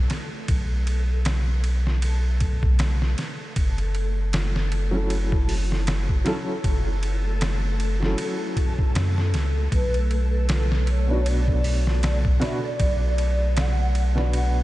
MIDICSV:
0, 0, Header, 1, 6, 480
1, 0, Start_track
1, 0, Key_signature, 2, "minor"
1, 0, Tempo, 769231
1, 306, Time_signature, 4, 2, 24, 8
1, 9130, End_track
2, 0, Start_track
2, 0, Title_t, "Soft synth lead"
2, 0, Program_c, 0, 80
2, 6072, Note_on_c, 0, 71, 120
2, 6525, Note_off_c, 0, 71, 0
2, 6795, Note_on_c, 0, 73, 99
2, 7030, Note_on_c, 0, 74, 112
2, 7039, Note_off_c, 0, 73, 0
2, 7508, Note_off_c, 0, 74, 0
2, 7518, Note_on_c, 0, 74, 100
2, 7606, Note_off_c, 0, 74, 0
2, 7755, Note_on_c, 0, 76, 101
2, 7815, Note_off_c, 0, 76, 0
2, 7890, Note_on_c, 0, 74, 114
2, 8476, Note_on_c, 0, 78, 110
2, 8485, Note_off_c, 0, 74, 0
2, 8711, Note_off_c, 0, 78, 0
2, 8720, Note_on_c, 0, 78, 127
2, 9130, Note_off_c, 0, 78, 0
2, 9130, End_track
3, 0, Start_track
3, 0, Title_t, "Synth texture"
3, 0, Program_c, 1, 99
3, 0, Note_on_c, 1, 57, 80
3, 0, Note_on_c, 1, 69, 79
3, 9130, Note_off_c, 1, 57, 0
3, 9130, Note_off_c, 1, 69, 0
3, 9130, End_track
4, 0, Start_track
4, 0, Title_t, "Felt piano"
4, 0, Program_c, 2, 0
4, 3065, Note_on_c, 2, 54, 66
4, 3076, Note_on_c, 2, 61, 60
4, 3087, Note_on_c, 2, 64, 62
4, 3095, Note_on_c, 2, 69, 77
4, 3873, Note_off_c, 2, 54, 0
4, 3878, Note_off_c, 2, 61, 0
4, 3883, Note_off_c, 2, 64, 0
4, 3887, Note_off_c, 2, 69, 0
4, 3897, Note_on_c, 2, 54, 92
4, 3901, Note_on_c, 2, 61, 87
4, 3908, Note_on_c, 2, 64, 80
4, 3911, Note_on_c, 2, 69, 108
4, 4052, Note_off_c, 2, 54, 0
4, 4054, Note_off_c, 2, 61, 0
4, 4058, Note_off_c, 2, 64, 0
4, 4059, Note_off_c, 2, 69, 0
4, 4992, Note_on_c, 2, 54, 65
4, 5002, Note_on_c, 2, 61, 62
4, 5011, Note_on_c, 2, 64, 64
4, 5021, Note_on_c, 2, 69, 79
4, 5796, Note_off_c, 2, 54, 0
4, 5801, Note_off_c, 2, 61, 0
4, 5806, Note_off_c, 2, 64, 0
4, 5810, Note_off_c, 2, 69, 0
4, 6909, Note_on_c, 2, 47, 65
4, 6919, Note_on_c, 2, 59, 61
4, 6928, Note_on_c, 2, 62, 67
4, 6937, Note_on_c, 2, 66, 75
4, 7715, Note_off_c, 2, 47, 0
4, 7719, Note_off_c, 2, 59, 0
4, 7724, Note_off_c, 2, 62, 0
4, 7729, Note_off_c, 2, 66, 0
4, 7736, Note_on_c, 2, 47, 87
4, 7742, Note_on_c, 2, 59, 89
4, 7746, Note_on_c, 2, 62, 81
4, 7750, Note_on_c, 2, 66, 98
4, 7892, Note_off_c, 2, 47, 0
4, 7895, Note_off_c, 2, 59, 0
4, 7897, Note_off_c, 2, 62, 0
4, 7899, Note_off_c, 2, 66, 0
4, 8832, Note_on_c, 2, 47, 71
4, 8840, Note_on_c, 2, 59, 69
4, 8849, Note_on_c, 2, 62, 63
4, 8858, Note_on_c, 2, 66, 73
4, 9130, Note_off_c, 2, 47, 0
4, 9130, Note_off_c, 2, 59, 0
4, 9130, Note_off_c, 2, 62, 0
4, 9130, Note_off_c, 2, 66, 0
4, 9130, End_track
5, 0, Start_track
5, 0, Title_t, "Analog synth bass"
5, 0, Program_c, 3, 38
5, 304, Note_on_c, 3, 35, 92
5, 1966, Note_off_c, 3, 35, 0
5, 2224, Note_on_c, 3, 30, 96
5, 3885, Note_off_c, 3, 30, 0
5, 4147, Note_on_c, 3, 30, 97
5, 5087, Note_off_c, 3, 30, 0
5, 5587, Note_on_c, 3, 42, 99
5, 5828, Note_on_c, 3, 37, 76
5, 5838, Note_off_c, 3, 42, 0
5, 6043, Note_off_c, 3, 37, 0
5, 6066, Note_on_c, 3, 35, 95
5, 7727, Note_off_c, 3, 35, 0
5, 7986, Note_on_c, 3, 35, 93
5, 9130, Note_off_c, 3, 35, 0
5, 9130, End_track
6, 0, Start_track
6, 0, Title_t, "Drums"
6, 61, Note_on_c, 9, 51, 61
6, 67, Note_on_c, 9, 38, 49
6, 124, Note_off_c, 9, 51, 0
6, 129, Note_off_c, 9, 38, 0
6, 302, Note_on_c, 9, 51, 83
6, 303, Note_on_c, 9, 36, 102
6, 364, Note_off_c, 9, 51, 0
6, 365, Note_off_c, 9, 36, 0
6, 543, Note_on_c, 9, 51, 60
6, 605, Note_off_c, 9, 51, 0
6, 781, Note_on_c, 9, 51, 83
6, 787, Note_on_c, 9, 38, 110
6, 843, Note_off_c, 9, 51, 0
6, 849, Note_off_c, 9, 38, 0
6, 1021, Note_on_c, 9, 51, 64
6, 1084, Note_off_c, 9, 51, 0
6, 1166, Note_on_c, 9, 38, 39
6, 1228, Note_off_c, 9, 38, 0
6, 1262, Note_on_c, 9, 51, 80
6, 1324, Note_off_c, 9, 51, 0
6, 1501, Note_on_c, 9, 51, 58
6, 1503, Note_on_c, 9, 36, 87
6, 1563, Note_off_c, 9, 51, 0
6, 1565, Note_off_c, 9, 36, 0
6, 1640, Note_on_c, 9, 36, 95
6, 1703, Note_off_c, 9, 36, 0
6, 1740, Note_on_c, 9, 51, 83
6, 1746, Note_on_c, 9, 38, 106
6, 1803, Note_off_c, 9, 51, 0
6, 1808, Note_off_c, 9, 38, 0
6, 1884, Note_on_c, 9, 38, 36
6, 1947, Note_off_c, 9, 38, 0
6, 1983, Note_on_c, 9, 51, 60
6, 1989, Note_on_c, 9, 38, 41
6, 2046, Note_off_c, 9, 51, 0
6, 2051, Note_off_c, 9, 38, 0
6, 2222, Note_on_c, 9, 51, 83
6, 2224, Note_on_c, 9, 36, 102
6, 2285, Note_off_c, 9, 51, 0
6, 2286, Note_off_c, 9, 36, 0
6, 2360, Note_on_c, 9, 51, 40
6, 2423, Note_off_c, 9, 51, 0
6, 2462, Note_on_c, 9, 51, 59
6, 2525, Note_off_c, 9, 51, 0
6, 2702, Note_on_c, 9, 51, 83
6, 2708, Note_on_c, 9, 38, 115
6, 2765, Note_off_c, 9, 51, 0
6, 2770, Note_off_c, 9, 38, 0
6, 2845, Note_on_c, 9, 38, 41
6, 2908, Note_off_c, 9, 38, 0
6, 2944, Note_on_c, 9, 51, 61
6, 3006, Note_off_c, 9, 51, 0
6, 3183, Note_on_c, 9, 51, 79
6, 3246, Note_off_c, 9, 51, 0
6, 3321, Note_on_c, 9, 36, 94
6, 3384, Note_off_c, 9, 36, 0
6, 3425, Note_on_c, 9, 46, 75
6, 3487, Note_off_c, 9, 46, 0
6, 3570, Note_on_c, 9, 38, 40
6, 3632, Note_off_c, 9, 38, 0
6, 3664, Note_on_c, 9, 51, 83
6, 3669, Note_on_c, 9, 38, 106
6, 3726, Note_off_c, 9, 51, 0
6, 3732, Note_off_c, 9, 38, 0
6, 3802, Note_on_c, 9, 36, 82
6, 3864, Note_off_c, 9, 36, 0
6, 3904, Note_on_c, 9, 51, 64
6, 3910, Note_on_c, 9, 38, 52
6, 3967, Note_off_c, 9, 51, 0
6, 3972, Note_off_c, 9, 38, 0
6, 4144, Note_on_c, 9, 36, 100
6, 4145, Note_on_c, 9, 51, 82
6, 4207, Note_off_c, 9, 36, 0
6, 4207, Note_off_c, 9, 51, 0
6, 4385, Note_on_c, 9, 51, 63
6, 4447, Note_off_c, 9, 51, 0
6, 4624, Note_on_c, 9, 51, 86
6, 4630, Note_on_c, 9, 38, 108
6, 4687, Note_off_c, 9, 51, 0
6, 4692, Note_off_c, 9, 38, 0
6, 4866, Note_on_c, 9, 51, 65
6, 4928, Note_off_c, 9, 51, 0
6, 5008, Note_on_c, 9, 38, 42
6, 5071, Note_off_c, 9, 38, 0
6, 5104, Note_on_c, 9, 51, 86
6, 5167, Note_off_c, 9, 51, 0
6, 5345, Note_on_c, 9, 36, 83
6, 5346, Note_on_c, 9, 51, 63
6, 5408, Note_off_c, 9, 36, 0
6, 5409, Note_off_c, 9, 51, 0
6, 5483, Note_on_c, 9, 36, 92
6, 5545, Note_off_c, 9, 36, 0
6, 5587, Note_on_c, 9, 51, 82
6, 5593, Note_on_c, 9, 38, 104
6, 5649, Note_off_c, 9, 51, 0
6, 5655, Note_off_c, 9, 38, 0
6, 5728, Note_on_c, 9, 38, 37
6, 5791, Note_off_c, 9, 38, 0
6, 5827, Note_on_c, 9, 51, 62
6, 5832, Note_on_c, 9, 38, 41
6, 5889, Note_off_c, 9, 51, 0
6, 5895, Note_off_c, 9, 38, 0
6, 6065, Note_on_c, 9, 36, 100
6, 6066, Note_on_c, 9, 51, 78
6, 6128, Note_off_c, 9, 36, 0
6, 6128, Note_off_c, 9, 51, 0
6, 6204, Note_on_c, 9, 51, 40
6, 6266, Note_off_c, 9, 51, 0
6, 6307, Note_on_c, 9, 51, 59
6, 6369, Note_off_c, 9, 51, 0
6, 6544, Note_on_c, 9, 51, 86
6, 6550, Note_on_c, 9, 38, 112
6, 6607, Note_off_c, 9, 51, 0
6, 6612, Note_off_c, 9, 38, 0
6, 6688, Note_on_c, 9, 38, 42
6, 6751, Note_off_c, 9, 38, 0
6, 6784, Note_on_c, 9, 51, 63
6, 6846, Note_off_c, 9, 51, 0
6, 7026, Note_on_c, 9, 51, 85
6, 7089, Note_off_c, 9, 51, 0
6, 7163, Note_on_c, 9, 36, 92
6, 7225, Note_off_c, 9, 36, 0
6, 7265, Note_on_c, 9, 46, 73
6, 7328, Note_off_c, 9, 46, 0
6, 7408, Note_on_c, 9, 38, 41
6, 7471, Note_off_c, 9, 38, 0
6, 7507, Note_on_c, 9, 51, 83
6, 7513, Note_on_c, 9, 38, 100
6, 7569, Note_off_c, 9, 51, 0
6, 7575, Note_off_c, 9, 38, 0
6, 7643, Note_on_c, 9, 36, 88
6, 7705, Note_off_c, 9, 36, 0
6, 7747, Note_on_c, 9, 51, 65
6, 7753, Note_on_c, 9, 38, 53
6, 7809, Note_off_c, 9, 51, 0
6, 7815, Note_off_c, 9, 38, 0
6, 7985, Note_on_c, 9, 36, 102
6, 7985, Note_on_c, 9, 51, 80
6, 8047, Note_off_c, 9, 36, 0
6, 8047, Note_off_c, 9, 51, 0
6, 8226, Note_on_c, 9, 51, 62
6, 8288, Note_off_c, 9, 51, 0
6, 8465, Note_on_c, 9, 51, 86
6, 8471, Note_on_c, 9, 38, 116
6, 8528, Note_off_c, 9, 51, 0
6, 8533, Note_off_c, 9, 38, 0
6, 8705, Note_on_c, 9, 51, 64
6, 8767, Note_off_c, 9, 51, 0
6, 8847, Note_on_c, 9, 38, 42
6, 8910, Note_off_c, 9, 38, 0
6, 8945, Note_on_c, 9, 51, 84
6, 9007, Note_off_c, 9, 51, 0
6, 9130, End_track
0, 0, End_of_file